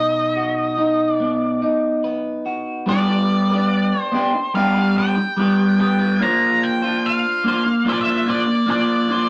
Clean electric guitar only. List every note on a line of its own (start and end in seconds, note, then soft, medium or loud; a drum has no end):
0.00 1.63 B2 medium
0.00 0.76 D#4 medium
0.36 2.44 F#4 medium
0.77 1.61 D#4 medium
1.20 2.86 B3 medium
1.62 2.88 D#4 medium
2.04 2.88 B4 medium
2.46 2.88 F#4 medium
2.86 3.91 G3 loud
2.86 3.92 B3 medium
2.86 3.53 D4 loud
2.86 3.51 G4 loud
2.86 3.49 B4 loud
3.50 4.13 D4 medium
3.50 4.13 G4 medium
3.50 4.14 B4 medium
4.12 4.33 B3 medium
4.12 4.34 D4 medium
4.12 4.33 G4 loud
4.16 4.32 B4 medium
4.34 muted clean electric guitar stroke medium
4.54 5.17 G3 medium
4.54 4.95 B3 loud
4.54 4.78 D4 loud
4.54 4.75 G4 loud
4.54 4.73 B4 loud
4.74 4.97 D4 medium
4.74 4.97 G4 medium
4.74 4.98 B4 medium
4.96 5.17 B3 medium
4.96 5.17 D4 medium
4.96 5.16 G4 medium
4.96 5.15 B4 medium
5.17 muted clean electric guitar stroke medium
5.36 6.18 G3 medium
5.36 5.77 B3 medium
5.36 5.79 D4 medium
5.36 5.79 G4 loud
5.36 5.80 B4 loud
5.78 6.18 B3 medium
5.78 6.02 D4 medium
5.78 6.00 G4 medium
5.78 5.98 B4 medium
5.99 6.20 D4 medium
5.99 6.19 G4 medium
5.99 6.18 B4 medium
6.19 7.24 A#3 loud
6.19 6.85 D4 medium
6.19 6.83 F4 loud
6.19 6.81 C5 loud
6.82 7.45 D4 medium
6.82 7.45 F4 medium
6.82 7.47 C5 medium
7.44 7.83 A#3 medium
7.44 7.66 D4 medium
7.44 7.64 F4 medium
7.44 7.64 C5 medium
7.65 muted clean electric guitar stroke medium
7.85 8.24 A#3 medium
7.85 8.08 D4 loud
7.85 8.05 F4 medium
7.85 8.03 C5 loud
8.05 8.26 D4 medium
8.05 8.26 F4 medium
8.05 8.27 C5 medium
8.25 8.65 A#3 medium
8.25 8.47 D4 medium
8.25 8.46 F4 medium
8.25 8.45 C5 medium
8.46 muted clean electric guitar stroke medium
8.66 9.07 A#3 medium
8.66 9.10 D4 medium
8.66 9.10 F4 loud
8.66 9.11 C5 loud
9.08 9.29 A#3 medium
9.08 9.29 D4 medium
9.08 9.29 F4 medium
9.08 9.29 C5 medium